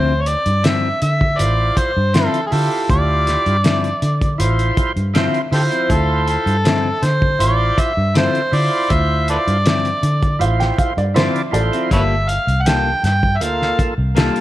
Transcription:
Already playing: fingered electric bass D2, clean electric guitar D3 F3 C4 E4, harmonica C5
0.21 harmonica C#5
0.26 harmonica D5, closed hi-hat
0.46 fingered electric bass G2, closed hi-hat
0.63 clean electric guitar D3 F3 C4 E4, harmonica E5, snare, closed hi-hat
1.02 fingered electric bass D3, harmonica E5, closed hi-hat
1.21 kick
1.39 fingered electric bass A1, tonewheel organ E4 F4 C5, harmonica D5, closed hi-hat
1.77 harmonica C5, kick, closed hi-hat
1.97 fingered electric bass G2
2.14 clean electric guitar D3 F3 C4 E4, tonewheel organ E4 F4 C5, harmonica A4, snare, closed hi-hat
2.34 closed hi-hat
2.47 harmonica G#4
2.51 fingered electric bass D3, tonewheel organ E4 F4 G4, harmonica A4, open hi-hat
2.89 fingered electric bass D2, harmonica D5, kick, closed hi-hat
3.27 snare, closed hi-hat
3.46 fingered electric bass G2, closed hi-hat
3.64 clean electric guitar D3 F3 C4 E4, snare, closed hi-hat
3.84 closed hi-hat
4.02 fingered electric bass D3, closed hi-hat
4.21 kick, closed hi-hat
4.38 fingered electric bass A1, tonewheel organ E4 F4 C5, closed hi-hat
4.59 closed hi-hat
4.77 kick, closed hi-hat
4.96 fingered electric bass G2, closed hi-hat
5.14 clean electric guitar D3 F3 C4 E4, tonewheel organ E4 F4 C5, snare, closed hi-hat
5.34 closed hi-hat
5.51 fingered electric bass D3, tonewheel organ E4 F4 C5, harmonica G4 A4 C5, open hi-hat
5.71 clean electric guitar F3 C4 E4, closed hi-hat
5.90 fingered electric bass D2, harmonica A4, kick, closed hi-hat
6.28 harmonica A4, closed hi-hat
6.46 fingered electric bass G2, closed hi-hat
6.64 clean electric guitar D3 F3 C4 E4, snare, closed hi-hat
7.03 fingered electric bass D3, harmonica C5, snare, closed hi-hat
7.22 kick
7.39 fingered electric bass A1, tonewheel organ E4 F4 C5, harmonica D5, closed hi-hat
7.78 harmonica E5, kick, closed hi-hat
7.97 fingered electric bass G2
8.14 clean electric guitar D3 F3 C4 E4, tonewheel organ E4 F4 A4, harmonica C5, snare, closed hi-hat
8.35 closed hi-hat
8.51 fingered electric bass D3, tonewheel organ E4 F4 C5, harmonica D5, open hi-hat
8.90 fingered electric bass D2, harmonica E5, kick, closed hi-hat
9.28 harmonica A4 B4 D5, closed hi-hat
9.47 fingered electric bass G2, closed hi-hat
9.65 clean electric guitar D3 F3 C4 E4, snare, closed hi-hat
9.85 closed hi-hat
10.03 fingered electric bass D3, closed hi-hat
10.23 kick, closed hi-hat
10.39 fingered electric bass A1, tonewheel organ E4 F4 C5, upright piano F5, closed hi-hat
10.60 upright piano G5, snare, closed hi-hat
10.79 upright piano F5, kick, closed hi-hat
10.97 fingered electric bass G2, upright piano D5, closed hi-hat
11.14 clean electric guitar D3 F3 C4 E4, tonewheel organ E4 F4 D5, upright piano C5, snare, closed hi-hat
11.36 closed hi-hat
11.51 fingered electric bass A1, tonewheel organ E4 F4 C5, upright piano A4 D5, closed hi-hat
11.72 clean electric guitar F3 C4 E4, closed hi-hat
11.91 fingered electric bass G1, clean electric guitar G3 A#3 F4 A4, harmonica B4 C#5 E5, kick, closed hi-hat
12.29 harmonica F5, closed hi-hat
12.47 fingered electric bass C2, closed hi-hat
12.62 harmonica F#5
12.66 clean electric guitar G3 A#3 F4 A4, harmonica G5, snare, closed hi-hat
13.03 fingered electric bass G2, harmonica G5, snare, closed hi-hat
13.23 kick
13.37 fingered electric bass D2, tonewheel organ A#3, harmonica E5
13.41 tonewheel organ F4 A4, harmonica F5, closed hi-hat
13.62 snare
13.79 kick, closed hi-hat
13.98 fingered electric bass C2
14.15 clean electric guitar G3 A#3 F4 A4, tonewheel organ A#3 F4 A4, snare, closed hi-hat
14.36 closed hi-hat

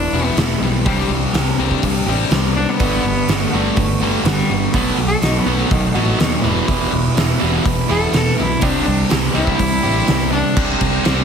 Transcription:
Already playing: distorted electric guitar E2 B2, clean electric guitar E3 G3 B3 E4, cello D4
0.13 picked electric bass E1, distorted electric guitar E2 B2 E3, clean electric guitar E3 G3 B3 E4
0.25 cello B3
0.37 picked electric bass E1, distorted electric guitar E2 B2, clean electric guitar E3 G3 B3 E4, cello A3, snare, open hi-hat
0.60 picked electric bass B1, distorted electric guitar E2 B2, cello G3
0.85 picked electric bass C2, clean electric guitar C3 G3 C4 D4 G4, distorted electric guitar C3 G3 C4, cello G3, kick, open hi-hat
1.09 picked electric bass C2, distorted electric guitar C3 G3
1.32 picked electric bass C2, clean electric guitar C3 G3 C4 D4 G4, distorted electric guitar C3 G3, snare, open hi-hat
1.58 picked electric bass C2, distorted electric guitar C3 G3 C4, clean electric guitar C4 D4 G4
1.71 kick
1.83 picked electric bass C2, distorted electric guitar C3 G3, kick, open hi-hat
2.06 picked electric bass A1, distorted electric guitar C3 G3 C4, clean electric guitar C4 D4 G4
2.30 picked electric bass C2, distorted electric guitar C3 G3, clean electric guitar G3 C4 D4 G4, snare, open hi-hat
2.56 distorted electric guitar C3 G3, cello D4
2.69 cello B3
2.79 picked electric bass G1, distorted electric guitar G2 D3 G3, clean electric guitar G3 B3 D4 F#4, kick, open hi-hat
3.04 picked electric bass G1, distorted electric guitar G2 D3
3.27 picked electric bass G1, distorted electric guitar G2 D3, clean electric guitar G3 B3 D4 F#4, snare, open hi-hat
3.43 cello A3
3.52 picked electric bass G1, distorted electric guitar G2 D3 G3, clean electric guitar B3 D4 F#4
3.77 picked electric bass G1, distorted electric guitar G2 D3, kick, open hi-hat
4.00 picked electric bass G1, distorted electric guitar G2 D3 G3, clean electric guitar B3 D4 F#4
4.25 picked electric bass G1, distorted electric guitar G2 D3, clean electric guitar G3 B3 D4 F#4, cello G3, snare, open hi-hat
4.50 picked electric bass G1, distorted electric guitar G2 D3
4.73 picked electric bass B1, clean electric guitar B2 F#3 A3 D#4 F#4, distorted electric guitar B2 F#3 B3, kick, open hi-hat
4.98 picked electric bass B1, distorted electric guitar B2 F#3
5.07 cello A4
5.22 picked electric bass B1, clean electric guitar B2 F#3 A3 D#4 F#4, distorted electric guitar B2 F#3, cello D#4, snare, open hi-hat
5.39 cello B3
5.46 picked electric bass B1, distorted electric guitar B2 F#3 B3, clean electric guitar A3 D#4 F#4
5.55 cello A3
5.71 picked electric bass B1, distorted electric guitar B2 F#3, cello D#3, kick, open hi-hat
5.88 cello B2
5.94 picked electric bass A1, distorted electric guitar B2 F#3 B3, clean electric guitar A3 D#4 F#4
6.04 cello A2
6.17 picked electric bass D#2, distorted electric guitar B2 F#3, cello B2, clean electric guitar F#3 A3 D#4 F#4, snare, open hi-hat
6.42 picked electric bass E1, distorted electric guitar E2 B2 E3, clean electric guitar E2 B2 E3 G3 B3 E4
6.66 picked electric bass E1, clean electric guitar E2 B2 E3 G3 B3 E4, distorted electric guitar E2 B2 E3, kick, open hi-hat
6.92 picked electric bass E1, distorted electric guitar E2 B2
7.16 picked electric bass E1, clean electric guitar E2 B2 E3 G3 B3 E4, distorted electric guitar E2 B2, snare, open hi-hat
7.40 picked electric bass E1, distorted electric guitar E2 B2 E3, clean electric guitar E3 G3 B3 E4
7.64 picked electric bass E1, distorted electric guitar E2 B2, kick, open hi-hat
7.89 picked electric bass E1, distorted electric guitar E2 B2 E3, clean electric guitar E3 G3 B3 E4, cello A4
8.13 picked electric bass E1, distorted electric guitar E2 B2, clean electric guitar E3 G3 B3 E4, cello A4, snare, open hi-hat
8.38 picked electric bass B1, distorted electric guitar E2 B2, cello E4
8.61 picked electric bass C2, distorted electric guitar C3 G3 C4, clean electric guitar C3 G3 C4 D4 G4, cello D4, kick, open hi-hat
8.86 picked electric bass C2, distorted electric guitar C3 G3
9.10 picked electric bass C2, distorted electric guitar C3 G3, clean electric guitar C3 G3 C4 D4 G4, snare, open hi-hat
9.34 picked electric bass C2, distorted electric guitar C3 G3 C4, clean electric guitar C4 D4 G4, cello E4
9.47 kick
9.58 picked electric bass C2, distorted electric guitar C3 G3, kick, open hi-hat
9.83 picked electric bass A1, distorted electric guitar C3 G3 C4, clean electric guitar C4 D4 G4
10.07 picked electric bass C2, distorted electric guitar C3 G3, clean electric guitar G3 C4 D4 G4, snare, open hi-hat
10.33 distorted electric guitar C3 G3, cello D4
10.57 picked electric bass C2, distorted electric guitar C3 G3 C4, kick, crash
10.81 picked electric bass C2, kick, ride
11.05 picked electric bass C2, distorted electric guitar C3 G3 C4, snare, ride

